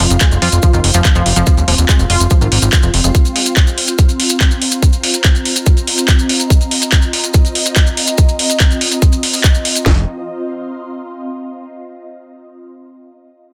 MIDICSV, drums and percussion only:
0, 0, Header, 1, 2, 480
1, 0, Start_track
1, 0, Tempo, 419580
1, 1679, Time_signature, 4, 2, 24, 8
1, 15481, End_track
2, 0, Start_track
2, 0, Title_t, "Drums"
2, 0, Note_on_c, 9, 46, 117
2, 115, Note_off_c, 9, 46, 0
2, 120, Note_on_c, 9, 42, 52
2, 121, Note_on_c, 9, 70, 87
2, 231, Note_off_c, 9, 70, 0
2, 231, Note_on_c, 9, 70, 76
2, 235, Note_off_c, 9, 42, 0
2, 240, Note_on_c, 9, 36, 122
2, 240, Note_on_c, 9, 39, 119
2, 240, Note_on_c, 9, 42, 53
2, 345, Note_off_c, 9, 70, 0
2, 354, Note_off_c, 9, 36, 0
2, 355, Note_off_c, 9, 39, 0
2, 355, Note_off_c, 9, 42, 0
2, 360, Note_on_c, 9, 42, 25
2, 363, Note_on_c, 9, 70, 41
2, 475, Note_off_c, 9, 42, 0
2, 478, Note_off_c, 9, 70, 0
2, 480, Note_on_c, 9, 46, 108
2, 595, Note_off_c, 9, 46, 0
2, 598, Note_on_c, 9, 70, 92
2, 600, Note_on_c, 9, 42, 53
2, 712, Note_off_c, 9, 70, 0
2, 713, Note_on_c, 9, 70, 72
2, 715, Note_off_c, 9, 42, 0
2, 720, Note_on_c, 9, 36, 118
2, 720, Note_on_c, 9, 42, 51
2, 828, Note_off_c, 9, 70, 0
2, 834, Note_off_c, 9, 36, 0
2, 834, Note_off_c, 9, 42, 0
2, 840, Note_on_c, 9, 42, 26
2, 844, Note_on_c, 9, 70, 39
2, 954, Note_off_c, 9, 42, 0
2, 958, Note_off_c, 9, 70, 0
2, 960, Note_on_c, 9, 46, 110
2, 1073, Note_on_c, 9, 70, 89
2, 1075, Note_off_c, 9, 46, 0
2, 1080, Note_on_c, 9, 42, 52
2, 1188, Note_off_c, 9, 70, 0
2, 1195, Note_off_c, 9, 42, 0
2, 1196, Note_on_c, 9, 70, 67
2, 1200, Note_on_c, 9, 36, 126
2, 1200, Note_on_c, 9, 39, 127
2, 1200, Note_on_c, 9, 42, 53
2, 1310, Note_off_c, 9, 70, 0
2, 1314, Note_off_c, 9, 36, 0
2, 1315, Note_off_c, 9, 39, 0
2, 1315, Note_off_c, 9, 42, 0
2, 1319, Note_on_c, 9, 70, 41
2, 1320, Note_on_c, 9, 42, 25
2, 1433, Note_off_c, 9, 70, 0
2, 1435, Note_off_c, 9, 42, 0
2, 1440, Note_on_c, 9, 46, 116
2, 1554, Note_off_c, 9, 46, 0
2, 1560, Note_on_c, 9, 42, 54
2, 1560, Note_on_c, 9, 70, 75
2, 1674, Note_off_c, 9, 70, 0
2, 1674, Note_on_c, 9, 70, 70
2, 1675, Note_off_c, 9, 42, 0
2, 1680, Note_on_c, 9, 36, 127
2, 1680, Note_on_c, 9, 42, 49
2, 1789, Note_off_c, 9, 70, 0
2, 1794, Note_off_c, 9, 36, 0
2, 1795, Note_off_c, 9, 42, 0
2, 1800, Note_on_c, 9, 42, 25
2, 1804, Note_on_c, 9, 70, 38
2, 1915, Note_off_c, 9, 42, 0
2, 1919, Note_off_c, 9, 70, 0
2, 1920, Note_on_c, 9, 46, 118
2, 2035, Note_off_c, 9, 46, 0
2, 2039, Note_on_c, 9, 70, 82
2, 2040, Note_on_c, 9, 42, 49
2, 2153, Note_off_c, 9, 70, 0
2, 2155, Note_off_c, 9, 42, 0
2, 2160, Note_on_c, 9, 36, 125
2, 2160, Note_on_c, 9, 39, 119
2, 2160, Note_on_c, 9, 42, 51
2, 2167, Note_on_c, 9, 70, 64
2, 2274, Note_off_c, 9, 36, 0
2, 2275, Note_off_c, 9, 39, 0
2, 2275, Note_off_c, 9, 42, 0
2, 2280, Note_on_c, 9, 42, 26
2, 2281, Note_off_c, 9, 70, 0
2, 2281, Note_on_c, 9, 70, 39
2, 2395, Note_off_c, 9, 42, 0
2, 2395, Note_off_c, 9, 70, 0
2, 2400, Note_on_c, 9, 46, 110
2, 2515, Note_off_c, 9, 46, 0
2, 2520, Note_on_c, 9, 42, 51
2, 2523, Note_on_c, 9, 70, 89
2, 2635, Note_off_c, 9, 42, 0
2, 2635, Note_off_c, 9, 70, 0
2, 2635, Note_on_c, 9, 70, 66
2, 2640, Note_on_c, 9, 36, 119
2, 2640, Note_on_c, 9, 42, 49
2, 2750, Note_off_c, 9, 70, 0
2, 2754, Note_off_c, 9, 36, 0
2, 2755, Note_off_c, 9, 42, 0
2, 2760, Note_on_c, 9, 42, 27
2, 2762, Note_on_c, 9, 70, 39
2, 2875, Note_off_c, 9, 42, 0
2, 2876, Note_off_c, 9, 70, 0
2, 2880, Note_on_c, 9, 46, 110
2, 2994, Note_off_c, 9, 46, 0
2, 2999, Note_on_c, 9, 70, 86
2, 3000, Note_on_c, 9, 42, 52
2, 3114, Note_off_c, 9, 42, 0
2, 3114, Note_off_c, 9, 70, 0
2, 3120, Note_on_c, 9, 36, 121
2, 3120, Note_on_c, 9, 39, 120
2, 3120, Note_on_c, 9, 42, 52
2, 3121, Note_on_c, 9, 70, 71
2, 3234, Note_off_c, 9, 36, 0
2, 3234, Note_off_c, 9, 39, 0
2, 3234, Note_off_c, 9, 42, 0
2, 3234, Note_off_c, 9, 70, 0
2, 3234, Note_on_c, 9, 70, 45
2, 3240, Note_on_c, 9, 42, 25
2, 3349, Note_off_c, 9, 70, 0
2, 3354, Note_off_c, 9, 42, 0
2, 3360, Note_on_c, 9, 46, 112
2, 3474, Note_off_c, 9, 46, 0
2, 3479, Note_on_c, 9, 70, 78
2, 3480, Note_on_c, 9, 42, 51
2, 3593, Note_off_c, 9, 70, 0
2, 3595, Note_off_c, 9, 42, 0
2, 3600, Note_on_c, 9, 36, 120
2, 3600, Note_on_c, 9, 42, 48
2, 3603, Note_on_c, 9, 70, 69
2, 3714, Note_off_c, 9, 36, 0
2, 3714, Note_off_c, 9, 42, 0
2, 3718, Note_off_c, 9, 70, 0
2, 3720, Note_on_c, 9, 42, 25
2, 3721, Note_on_c, 9, 70, 39
2, 3835, Note_off_c, 9, 42, 0
2, 3835, Note_off_c, 9, 70, 0
2, 3840, Note_on_c, 9, 46, 108
2, 3955, Note_off_c, 9, 46, 0
2, 3958, Note_on_c, 9, 70, 72
2, 3960, Note_on_c, 9, 42, 50
2, 4073, Note_off_c, 9, 70, 0
2, 4075, Note_off_c, 9, 42, 0
2, 4078, Note_on_c, 9, 70, 61
2, 4080, Note_on_c, 9, 36, 119
2, 4080, Note_on_c, 9, 39, 117
2, 4080, Note_on_c, 9, 42, 52
2, 4193, Note_off_c, 9, 70, 0
2, 4194, Note_off_c, 9, 36, 0
2, 4195, Note_off_c, 9, 39, 0
2, 4195, Note_off_c, 9, 42, 0
2, 4200, Note_on_c, 9, 42, 25
2, 4201, Note_on_c, 9, 70, 39
2, 4315, Note_off_c, 9, 42, 0
2, 4315, Note_off_c, 9, 70, 0
2, 4320, Note_on_c, 9, 46, 104
2, 4434, Note_on_c, 9, 70, 79
2, 4435, Note_off_c, 9, 46, 0
2, 4440, Note_on_c, 9, 42, 51
2, 4549, Note_off_c, 9, 70, 0
2, 4554, Note_off_c, 9, 42, 0
2, 4558, Note_on_c, 9, 70, 72
2, 4560, Note_on_c, 9, 36, 118
2, 4560, Note_on_c, 9, 42, 50
2, 4672, Note_off_c, 9, 70, 0
2, 4674, Note_off_c, 9, 36, 0
2, 4675, Note_off_c, 9, 42, 0
2, 4678, Note_on_c, 9, 70, 42
2, 4680, Note_on_c, 9, 42, 26
2, 4792, Note_off_c, 9, 70, 0
2, 4795, Note_off_c, 9, 42, 0
2, 4800, Note_on_c, 9, 46, 108
2, 4914, Note_on_c, 9, 70, 84
2, 4915, Note_off_c, 9, 46, 0
2, 4920, Note_on_c, 9, 42, 53
2, 5029, Note_off_c, 9, 70, 0
2, 5035, Note_off_c, 9, 42, 0
2, 5040, Note_on_c, 9, 36, 115
2, 5040, Note_on_c, 9, 39, 116
2, 5040, Note_on_c, 9, 42, 52
2, 5043, Note_on_c, 9, 70, 61
2, 5154, Note_off_c, 9, 36, 0
2, 5154, Note_off_c, 9, 39, 0
2, 5154, Note_off_c, 9, 42, 0
2, 5157, Note_off_c, 9, 70, 0
2, 5160, Note_on_c, 9, 42, 25
2, 5160, Note_on_c, 9, 70, 39
2, 5274, Note_off_c, 9, 70, 0
2, 5275, Note_off_c, 9, 42, 0
2, 5280, Note_on_c, 9, 46, 106
2, 5394, Note_on_c, 9, 70, 85
2, 5395, Note_off_c, 9, 46, 0
2, 5400, Note_on_c, 9, 42, 50
2, 5508, Note_off_c, 9, 70, 0
2, 5515, Note_off_c, 9, 42, 0
2, 5520, Note_on_c, 9, 36, 113
2, 5520, Note_on_c, 9, 42, 51
2, 5527, Note_on_c, 9, 70, 63
2, 5634, Note_off_c, 9, 36, 0
2, 5635, Note_off_c, 9, 42, 0
2, 5637, Note_off_c, 9, 70, 0
2, 5637, Note_on_c, 9, 70, 41
2, 5640, Note_on_c, 9, 42, 26
2, 5751, Note_off_c, 9, 70, 0
2, 5755, Note_off_c, 9, 42, 0
2, 5760, Note_on_c, 9, 46, 107
2, 5875, Note_off_c, 9, 46, 0
2, 5879, Note_on_c, 9, 70, 79
2, 5880, Note_on_c, 9, 42, 52
2, 5993, Note_off_c, 9, 70, 0
2, 5994, Note_off_c, 9, 42, 0
2, 5999, Note_on_c, 9, 70, 59
2, 6000, Note_on_c, 9, 36, 113
2, 6000, Note_on_c, 9, 39, 114
2, 6000, Note_on_c, 9, 42, 53
2, 6113, Note_off_c, 9, 70, 0
2, 6114, Note_off_c, 9, 36, 0
2, 6114, Note_off_c, 9, 39, 0
2, 6114, Note_off_c, 9, 42, 0
2, 6120, Note_on_c, 9, 42, 26
2, 6129, Note_on_c, 9, 70, 34
2, 6234, Note_off_c, 9, 42, 0
2, 6240, Note_on_c, 9, 46, 96
2, 6243, Note_off_c, 9, 70, 0
2, 6354, Note_off_c, 9, 46, 0
2, 6360, Note_on_c, 9, 42, 52
2, 6363, Note_on_c, 9, 70, 81
2, 6474, Note_off_c, 9, 42, 0
2, 6476, Note_off_c, 9, 70, 0
2, 6476, Note_on_c, 9, 70, 69
2, 6480, Note_on_c, 9, 36, 114
2, 6480, Note_on_c, 9, 42, 50
2, 6590, Note_off_c, 9, 70, 0
2, 6594, Note_off_c, 9, 36, 0
2, 6594, Note_off_c, 9, 42, 0
2, 6600, Note_on_c, 9, 42, 27
2, 6607, Note_on_c, 9, 70, 37
2, 6715, Note_off_c, 9, 42, 0
2, 6720, Note_on_c, 9, 46, 103
2, 6721, Note_off_c, 9, 70, 0
2, 6835, Note_off_c, 9, 46, 0
2, 6840, Note_on_c, 9, 42, 53
2, 6844, Note_on_c, 9, 70, 78
2, 6954, Note_off_c, 9, 42, 0
2, 6956, Note_off_c, 9, 70, 0
2, 6956, Note_on_c, 9, 70, 64
2, 6960, Note_on_c, 9, 36, 117
2, 6960, Note_on_c, 9, 39, 112
2, 6960, Note_on_c, 9, 42, 52
2, 7071, Note_off_c, 9, 70, 0
2, 7074, Note_off_c, 9, 36, 0
2, 7075, Note_off_c, 9, 39, 0
2, 7075, Note_off_c, 9, 42, 0
2, 7080, Note_on_c, 9, 42, 25
2, 7083, Note_on_c, 9, 70, 39
2, 7195, Note_off_c, 9, 42, 0
2, 7197, Note_off_c, 9, 70, 0
2, 7200, Note_on_c, 9, 46, 103
2, 7315, Note_off_c, 9, 46, 0
2, 7320, Note_on_c, 9, 42, 51
2, 7323, Note_on_c, 9, 70, 73
2, 7434, Note_off_c, 9, 42, 0
2, 7437, Note_off_c, 9, 70, 0
2, 7440, Note_on_c, 9, 36, 115
2, 7440, Note_on_c, 9, 42, 54
2, 7448, Note_on_c, 9, 70, 64
2, 7554, Note_off_c, 9, 36, 0
2, 7554, Note_off_c, 9, 42, 0
2, 7560, Note_on_c, 9, 42, 27
2, 7563, Note_off_c, 9, 70, 0
2, 7564, Note_on_c, 9, 70, 34
2, 7674, Note_off_c, 9, 42, 0
2, 7679, Note_off_c, 9, 70, 0
2, 7680, Note_on_c, 9, 46, 107
2, 7794, Note_off_c, 9, 46, 0
2, 7800, Note_on_c, 9, 42, 52
2, 7805, Note_on_c, 9, 70, 79
2, 7914, Note_off_c, 9, 42, 0
2, 7920, Note_off_c, 9, 70, 0
2, 7920, Note_on_c, 9, 36, 112
2, 7920, Note_on_c, 9, 39, 117
2, 7920, Note_on_c, 9, 42, 56
2, 7920, Note_on_c, 9, 70, 61
2, 8029, Note_off_c, 9, 70, 0
2, 8029, Note_on_c, 9, 70, 34
2, 8034, Note_off_c, 9, 36, 0
2, 8034, Note_off_c, 9, 39, 0
2, 8034, Note_off_c, 9, 42, 0
2, 8040, Note_on_c, 9, 42, 27
2, 8144, Note_off_c, 9, 70, 0
2, 8154, Note_off_c, 9, 42, 0
2, 8160, Note_on_c, 9, 46, 97
2, 8274, Note_off_c, 9, 46, 0
2, 8280, Note_on_c, 9, 42, 55
2, 8283, Note_on_c, 9, 70, 70
2, 8392, Note_off_c, 9, 70, 0
2, 8392, Note_on_c, 9, 70, 63
2, 8394, Note_off_c, 9, 42, 0
2, 8400, Note_on_c, 9, 36, 110
2, 8400, Note_on_c, 9, 42, 56
2, 8507, Note_off_c, 9, 70, 0
2, 8514, Note_off_c, 9, 36, 0
2, 8515, Note_off_c, 9, 42, 0
2, 8520, Note_on_c, 9, 42, 28
2, 8532, Note_on_c, 9, 70, 40
2, 8634, Note_off_c, 9, 42, 0
2, 8640, Note_on_c, 9, 46, 97
2, 8646, Note_off_c, 9, 70, 0
2, 8755, Note_off_c, 9, 46, 0
2, 8760, Note_on_c, 9, 42, 55
2, 8764, Note_on_c, 9, 70, 84
2, 8875, Note_off_c, 9, 42, 0
2, 8875, Note_off_c, 9, 70, 0
2, 8875, Note_on_c, 9, 70, 66
2, 8880, Note_on_c, 9, 36, 110
2, 8880, Note_on_c, 9, 39, 118
2, 8880, Note_on_c, 9, 42, 57
2, 8989, Note_off_c, 9, 70, 0
2, 8994, Note_off_c, 9, 36, 0
2, 8995, Note_off_c, 9, 39, 0
2, 8995, Note_off_c, 9, 42, 0
2, 9000, Note_on_c, 9, 42, 27
2, 9000, Note_on_c, 9, 70, 36
2, 9114, Note_off_c, 9, 70, 0
2, 9115, Note_off_c, 9, 42, 0
2, 9120, Note_on_c, 9, 46, 106
2, 9233, Note_on_c, 9, 70, 77
2, 9235, Note_off_c, 9, 46, 0
2, 9240, Note_on_c, 9, 42, 55
2, 9347, Note_off_c, 9, 70, 0
2, 9355, Note_off_c, 9, 42, 0
2, 9356, Note_on_c, 9, 70, 68
2, 9360, Note_on_c, 9, 36, 115
2, 9360, Note_on_c, 9, 42, 53
2, 9471, Note_off_c, 9, 70, 0
2, 9474, Note_off_c, 9, 36, 0
2, 9475, Note_off_c, 9, 42, 0
2, 9479, Note_on_c, 9, 70, 40
2, 9480, Note_on_c, 9, 42, 27
2, 9593, Note_off_c, 9, 70, 0
2, 9595, Note_off_c, 9, 42, 0
2, 9600, Note_on_c, 9, 46, 108
2, 9715, Note_off_c, 9, 46, 0
2, 9720, Note_on_c, 9, 42, 55
2, 9726, Note_on_c, 9, 70, 74
2, 9835, Note_off_c, 9, 42, 0
2, 9840, Note_off_c, 9, 70, 0
2, 9840, Note_on_c, 9, 36, 112
2, 9840, Note_on_c, 9, 39, 122
2, 9840, Note_on_c, 9, 42, 55
2, 9841, Note_on_c, 9, 70, 68
2, 9954, Note_off_c, 9, 36, 0
2, 9955, Note_off_c, 9, 39, 0
2, 9955, Note_off_c, 9, 42, 0
2, 9955, Note_off_c, 9, 70, 0
2, 9960, Note_on_c, 9, 42, 27
2, 9970, Note_on_c, 9, 70, 34
2, 10074, Note_off_c, 9, 42, 0
2, 10080, Note_on_c, 9, 46, 104
2, 10085, Note_off_c, 9, 70, 0
2, 10194, Note_off_c, 9, 46, 0
2, 10200, Note_on_c, 9, 42, 58
2, 10200, Note_on_c, 9, 70, 73
2, 10314, Note_off_c, 9, 42, 0
2, 10315, Note_off_c, 9, 70, 0
2, 10320, Note_on_c, 9, 36, 115
2, 10320, Note_on_c, 9, 42, 57
2, 10321, Note_on_c, 9, 70, 66
2, 10434, Note_off_c, 9, 36, 0
2, 10435, Note_off_c, 9, 42, 0
2, 10435, Note_off_c, 9, 70, 0
2, 10437, Note_on_c, 9, 70, 39
2, 10440, Note_on_c, 9, 42, 28
2, 10551, Note_off_c, 9, 70, 0
2, 10554, Note_off_c, 9, 42, 0
2, 10560, Note_on_c, 9, 46, 104
2, 10674, Note_off_c, 9, 46, 0
2, 10680, Note_on_c, 9, 46, 62
2, 10680, Note_on_c, 9, 70, 74
2, 10794, Note_off_c, 9, 70, 0
2, 10795, Note_off_c, 9, 46, 0
2, 10800, Note_on_c, 9, 36, 112
2, 10800, Note_on_c, 9, 39, 126
2, 10800, Note_on_c, 9, 42, 56
2, 10800, Note_on_c, 9, 70, 67
2, 10914, Note_off_c, 9, 36, 0
2, 10914, Note_off_c, 9, 39, 0
2, 10914, Note_off_c, 9, 42, 0
2, 10915, Note_off_c, 9, 70, 0
2, 10920, Note_on_c, 9, 42, 27
2, 10922, Note_on_c, 9, 70, 41
2, 11034, Note_off_c, 9, 42, 0
2, 11037, Note_off_c, 9, 70, 0
2, 11040, Note_on_c, 9, 46, 109
2, 11154, Note_off_c, 9, 46, 0
2, 11160, Note_on_c, 9, 42, 56
2, 11168, Note_on_c, 9, 70, 82
2, 11275, Note_off_c, 9, 42, 0
2, 11280, Note_on_c, 9, 36, 111
2, 11280, Note_on_c, 9, 38, 108
2, 11282, Note_off_c, 9, 70, 0
2, 11394, Note_off_c, 9, 36, 0
2, 11394, Note_off_c, 9, 38, 0
2, 15481, End_track
0, 0, End_of_file